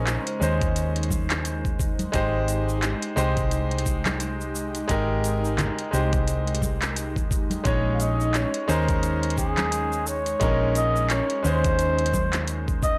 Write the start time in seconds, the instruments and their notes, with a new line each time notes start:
Already playing: fingered electric bass A#1, analog synth pad C#3 G#3 D#4 C5, grand piano G#3 C#4 D#4 A#4
0.07 clap, closed hi-hat, shaker
0.27 closed hi-hat
0.40 fingered electric bass D#2, grand piano G#3 C#4 D#4 C5, shaker
0.61 kick, closed hi-hat, shaker
0.76 closed hi-hat, shaker
0.96 closed hi-hat
1.03 closed hi-hat
1.10 kick, high conga, shaker
1.30 clap, closed hi-hat, shaker
1.45 closed hi-hat, shaker
1.65 kick, shaker
1.80 kick, shaker
1.99 closed hi-hat, high conga, shaker
2.12 fingered electric bass G#1, grand piano G#3 D#4 G4 C5, analog synth pad G4, kick, closed hi-hat, shaker
2.48 closed hi-hat, shaker
2.69 shaker
2.83 clap, closed hi-hat, shaker
3.02 closed hi-hat
3.16 fingered electric bass C2, grand piano G#3 D#4 G4 C5, shaker
3.37 kick, closed hi-hat, shaker
3.51 closed hi-hat, shaker
3.71 closed hi-hat
3.78 closed hi-hat
3.86 kick, shaker
4.06 clap, closed hi-hat, high conga, shaker
4.20 closed hi-hat, shaker
4.41 shaker
4.55 shaker
4.75 closed hi-hat, shaker
4.88 fingered electric bass G#1, grand piano G#3 D#4 G4 A#4, kick, closed hi-hat, shaker
5.24 closed hi-hat, shaker
5.45 shaker
5.58 clap, closed hi-hat, low conga, shaker
5.79 closed hi-hat
5.91 fingered electric bass C2, grand piano G#3 D#4 G4 C5, shaker
6.13 kick, closed hi-hat, shaker
6.28 closed hi-hat, shaker
6.47 closed hi-hat
6.55 closed hi-hat
6.62 kick, high conga, shaker
6.82 clap, closed hi-hat, shaker
6.96 closed hi-hat, shaker
7.16 fingered electric bass D#2, kick, shaker
7.31 kick, shaker
7.50 closed hi-hat, high conga, shaker
7.64 fingered electric bass A#1, grand piano G#3 C#4 D#4 C#5, analog synth pad C#4, kick, closed hi-hat, shaker
7.94 flugelhorn F5
8.00 flugelhorn D#5, closed hi-hat, shaker
8.20 shaker
8.34 flugelhorn C#5, clap, closed hi-hat, shaker
8.54 closed hi-hat
8.68 fingered electric bass D#2, grand piano G#3 C#4 D#4 C5, flugelhorn A#4, shaker
8.89 kick, closed hi-hat, shaker
9.03 closed hi-hat, shaker
9.23 closed hi-hat
9.30 closed hi-hat
9.38 flugelhorn G#4, kick, shaker
9.57 clap, closed hi-hat, high conga, shaker
9.72 closed hi-hat, shaker
9.92 shaker
10.07 flugelhorn C#5, shaker
10.26 closed hi-hat, shaker
10.40 fingered electric bass A#1, grand piano G#3 C#4 D#4 A#4, kick, closed hi-hat, shaker
10.75 flugelhorn D#5, closed hi-hat, shaker
10.96 shaker
11.10 flugelhorn C#5, clap, closed hi-hat, shaker
11.30 closed hi-hat
11.43 fingered electric bass D#2, grand piano G#3 C#4 D#4 C5, flugelhorn C5, shaker
11.64 kick, closed hi-hat, shaker
11.79 closed hi-hat, shaker
11.99 closed hi-hat
12.06 closed hi-hat
12.13 kick, high conga, shaker
12.33 clap, closed hi-hat, shaker
12.48 closed hi-hat, shaker
12.68 kick, shaker
12.83 flugelhorn D#5, kick, shaker